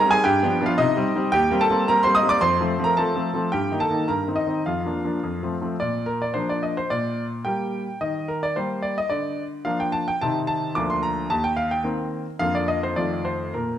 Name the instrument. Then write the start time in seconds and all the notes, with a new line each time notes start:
grand piano
Already playing: A#4 A#5
0.06 G3 C4 D#4
0.11 G#4 G#5
0.24 G2 G4 G5
0.43 F3 B3 D4
0.61 F3 B3 D4
0.66 F4 F5
0.78 C3 D#4 D#5
0.97 G3 C4
1.16 G3 C4
1.32 D#2 G4 G5
1.51 G3 A#3 C4
1.61 A4 A5
1.70 G3 A#3 C4
1.88 G3 A#3 C4 A#4 A#5
2.03 C5 C6
2.07 G3 A#3 C4
2.15 D#5 D#6
2.23 G3 A#3 C4
2.29 D5 D6
2.41 F2 C5 C6
2.61 F3 A3 C4
2.79 F3 A3 C4
2.84 A#4 A#5
2.97 F3 A3 C4 A4 A5
3.15 F3 A3 C4
3.34 F3 A3 C4
3.52 G2 G4 G5
3.71 D#3 A#3 D#4
3.80 A4 A5
3.91 D#3 A#3 D#4
4.08 G2 A#4 A#5
4.28 D#3 C4 D#4
4.36 D#4 D#5
4.47 D#3 C4 D#4
4.66 F2 F4 F5
4.85 F3 A#3 D4
5.04 F3 A#3 D4
5.23 F2
5.43 F3 A3 C4
5.61 F3 A3 C4
5.80 A#2 D5
6.06 A#4
6.22 D5
6.34 F3 A#3 D4 C5
6.49 D5
6.63 D#5
6.77 C5
6.90 A#2 D5
7.45 G3 A#3 G4 G5
8.01 D#3 D#5
8.28 A#4
8.43 D5
8.56 G3 A#3 G4 C5
8.82 D5
8.98 D#5
9.10 D3 D5
9.65 F3 A#3 D4 F5
9.80 G5
9.92 A5
10.08 G5
10.21 C3 D#3 C4 D#4 A5
10.47 A5
10.75 D2 F3 A#3 D4 D6
10.90 C6
11.03 A#5
11.30 D#2 A5
11.44 G5
11.57 F5
11.71 G5
11.84 D#3 A#3 C4
12.39 F2 D3 A#3 F4 F5
12.55 D5
12.68 D#5
12.83 C5
12.96 F2 D#3 A3 F4 D5
13.25 C5
13.54 A#2 A#4